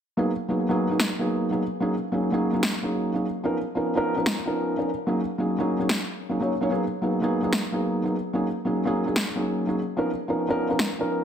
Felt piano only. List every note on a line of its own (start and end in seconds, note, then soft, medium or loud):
0.17 0.29 F#3 medium
0.17 0.30 A#3 medium
0.17 0.30 B3 medium
0.17 0.30 D#4 medium
0.17 0.30 G#4 medium
0.48 0.66 F#3 medium
0.48 0.66 A#3 medium
0.48 0.67 B3 medium
0.48 0.67 D#4 medium
0.48 0.67 G#4 medium
0.69 0.86 F#3 medium
0.69 0.87 A#3 medium
0.69 0.87 B3 medium
0.69 0.87 D#4 medium
0.69 0.87 G#4 medium
0.89 1.08 F#3 medium
0.89 1.08 A#3 medium
0.89 1.08 B3 medium
0.89 1.08 D#4 medium
0.89 1.09 G#4 medium
1.19 1.48 F#3 medium
1.19 1.49 A#3 medium
1.19 1.49 B3 medium
1.19 1.49 D#4 medium
1.19 1.49 G#4 medium
1.50 1.61 F#3 medium
1.50 1.62 A#3 medium
1.50 1.62 B3 medium
1.50 1.62 D#4 medium
1.50 1.62 G#4 medium
1.80 1.93 F#3 medium
1.80 1.93 A#3 medium
1.80 1.93 C#4 medium
1.80 1.94 D#4 medium
1.80 1.94 G#4 medium
2.12 2.29 F#3 medium
2.12 2.30 A#3 medium
2.12 2.30 C#4 medium
2.12 2.30 D#4 medium
2.12 2.30 G#4 medium
2.32 2.50 F#3 medium
2.32 2.50 A#3 medium
2.32 2.50 C#4 medium
2.32 2.50 D#4 medium
2.32 2.51 G#4 loud
2.53 2.71 F#3 medium
2.53 2.71 A#3 medium
2.53 2.71 C#4 medium
2.53 2.72 D#4 medium
2.53 2.72 G#4 medium
2.82 3.12 F#3 medium
2.82 3.12 A#3 medium
2.82 3.12 C#4 medium
2.82 3.12 D#4 medium
2.82 3.13 G#4 medium
3.14 3.25 F#3 medium
3.14 3.25 A#3 medium
3.14 3.25 C#4 medium
3.14 3.25 D#4 medium
3.14 3.26 G#4 medium
3.43 3.56 F3 medium
3.43 3.56 B3 medium
3.43 3.56 C#4 medium
3.43 3.57 D#4 medium
3.43 3.57 A#4 medium
3.75 3.93 F3 medium
3.75 3.93 B3 medium
3.75 3.93 C#4 medium
3.75 3.93 D#4 medium
3.75 3.94 A#4 medium
3.95 4.13 F3 medium
3.95 4.13 B3 medium
3.95 4.13 C#4 medium
3.95 4.14 D#4 medium
3.95 4.14 A#4 loud
4.16 4.34 F3 medium
4.16 4.34 B3 medium
4.16 4.35 C#4 medium
4.16 4.35 D#4 medium
4.16 4.35 A#4 medium
4.45 4.75 F3 medium
4.45 4.75 B3 medium
4.45 4.75 C#4 medium
4.45 4.76 D#4 medium
4.45 4.76 A#4 medium
4.77 4.88 F3 medium
4.77 4.88 B3 medium
4.77 4.88 C#4 medium
4.77 4.89 D#4 medium
4.77 4.89 A#4 medium
5.07 5.19 F#3 medium
5.07 5.19 A#3 medium
5.07 5.20 C#4 medium
5.07 5.20 D#4 medium
5.07 5.20 G#4 medium
5.38 5.56 F#3 medium
5.38 5.56 A#3 medium
5.38 5.56 C#4 medium
5.38 5.56 D#4 medium
5.38 5.57 G#4 medium
5.58 5.76 F#3 medium
5.58 5.76 A#3 medium
5.58 5.77 C#4 medium
5.58 5.77 D#4 medium
5.58 5.77 G#4 loud
5.79 5.97 F#3 medium
5.79 5.98 A#3 medium
5.79 5.98 C#4 medium
5.79 5.98 D#4 medium
5.79 5.98 G#4 medium
6.29 6.39 F#3 medium
6.29 6.39 A#3 medium
6.29 6.40 C#4 medium
6.29 6.40 D#4 medium
6.29 6.40 G#4 medium
6.40 6.51 F#3 medium
6.40 6.51 A#3 medium
6.40 6.52 C#4 medium
6.40 6.52 D#4 medium
6.40 6.52 C#5 medium
6.61 6.69 F#3 medium
6.61 6.69 A#3 medium
6.61 6.70 C#4 medium
6.61 6.70 D#4 medium
6.61 6.70 C#5 medium
6.70 6.83 F#3 medium
6.70 6.83 A#3 medium
6.70 6.83 B3 medium
6.70 6.83 D#4 medium
6.70 6.84 G#4 medium
7.02 7.19 F#3 medium
7.02 7.19 A#3 medium
7.02 7.20 B3 medium
7.02 7.20 D#4 medium
7.02 7.20 G#4 medium
7.22 7.39 F#3 medium
7.22 7.40 A#3 medium
7.22 7.40 B3 medium
7.22 7.40 D#4 medium
7.22 7.40 G#4 loud
7.42 7.61 F#3 medium
7.42 7.61 A#3 medium
7.42 7.61 B3 medium
7.42 7.61 D#4 medium
7.42 7.62 G#4 medium
7.72 8.01 F#3 medium
7.72 8.02 A#3 medium
7.72 8.02 B3 medium
7.72 8.02 D#4 medium
7.72 8.02 G#4 medium
8.04 8.14 F#3 medium
8.04 8.15 A#3 medium
8.04 8.15 B3 medium
8.04 8.15 D#4 medium
8.04 8.15 G#4 medium
8.33 8.46 F#3 medium
8.33 8.46 A#3 medium
8.33 8.46 C#4 medium
8.33 8.47 D#4 medium
8.33 8.47 G#4 medium
8.65 8.82 F#3 medium
8.65 8.83 A#3 medium
8.65 8.83 C#4 medium
8.65 8.83 D#4 medium
8.65 8.83 G#4 medium
8.85 9.03 F#3 medium
8.85 9.03 A#3 medium
8.85 9.03 C#4 medium
8.85 9.04 D#4 medium
8.85 9.04 G#4 loud
9.06 9.24 F#3 medium
9.06 9.24 A#3 medium
9.06 9.24 C#4 medium
9.06 9.25 D#4 medium
9.06 9.25 G#4 medium
9.35 9.65 F#3 medium
9.35 9.65 A#3 medium
9.35 9.65 C#4 medium
9.35 9.65 D#4 medium
9.35 9.66 G#4 medium
9.67 9.78 F#3 medium
9.67 9.78 A#3 medium
9.67 9.78 C#4 medium
9.67 9.79 D#4 medium
9.67 9.79 G#4 medium
9.97 10.09 F3 medium
9.97 10.09 B3 medium
9.97 10.10 C#4 medium
9.97 10.10 D#4 medium
9.97 10.10 A#4 medium
10.28 10.46 F3 medium
10.28 10.46 B3 medium
10.28 10.46 C#4 medium
10.28 10.46 D#4 medium
10.28 10.47 A#4 medium
10.48 10.66 F3 medium
10.48 10.66 B3 medium
10.48 10.67 C#4 medium
10.48 10.67 D#4 medium
10.48 10.67 A#4 loud
10.69 10.87 F3 medium
10.69 10.87 B3 medium
10.69 10.88 C#4 medium
10.69 10.88 D#4 medium
10.69 10.88 A#4 medium
10.99 11.24 F3 medium
10.99 11.24 B3 medium
10.99 11.24 C#4 medium
10.99 11.24 D#4 medium
10.99 11.24 A#4 medium